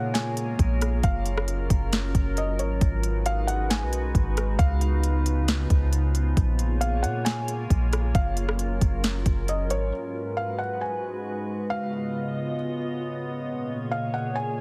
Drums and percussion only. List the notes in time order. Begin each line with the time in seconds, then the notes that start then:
0.15 snare, closed hi-hat
0.37 closed hi-hat
0.59 kick, closed hi-hat
0.81 cross-stick, closed hi-hat
1.03 kick, closed hi-hat
1.26 closed hi-hat
1.38 cross-stick
1.48 closed hi-hat
1.70 kick, closed hi-hat
1.93 snare, closed hi-hat
2.15 kick, closed hi-hat
2.37 closed hi-hat
2.59 closed hi-hat
2.81 kick, closed hi-hat
3.03 closed hi-hat
3.26 closed hi-hat
3.48 closed hi-hat
3.70 snare, closed hi-hat
3.93 closed hi-hat
4.15 kick, closed hi-hat
4.37 cross-stick, closed hi-hat
4.59 kick, closed hi-hat
4.81 closed hi-hat
5.04 closed hi-hat
5.26 closed hi-hat
5.48 snare, closed hi-hat
5.70 kick, closed hi-hat
5.93 closed hi-hat
6.15 closed hi-hat
6.37 kick, closed hi-hat
6.59 closed hi-hat
6.81 closed hi-hat
7.04 closed hi-hat
7.26 snare, closed hi-hat
7.48 closed hi-hat
7.70 kick, closed hi-hat
7.93 cross-stick, closed hi-hat
8.15 kick, closed hi-hat
8.37 closed hi-hat
8.49 cross-stick
8.59 closed hi-hat
8.81 kick, closed hi-hat
9.04 snare, closed hi-hat
9.26 kick, closed hi-hat
9.48 closed hi-hat
9.70 closed hi-hat